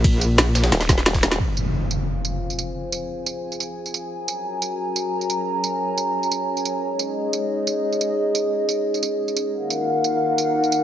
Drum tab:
RD |x---x---x---x---|----------------|----------------|----------------|
HH |xxx-x-xxxxx-xxxx|----------------|----------------|----------------|
TB |--x---x--xx--xx-|--x---x---x--xx-|--x---x--xx--xx-|--x---x---x--xx-|
SD |----o-oooooooooo|----------------|----------------|----------------|
BD |o---------o--o--|----------------|----------------|----------------|

RD |----------------|----------------|----------------|----------------|
HH |----------------|----------------|----------------|----------------|
TB |--x---x--xx--xx-|--x---x---x--xx-|--x---x--xx--xx-|--x---x---x--xx-|
SD |----------------|----------------|----------------|----------------|
BD |----------------|----------------|----------------|----------------|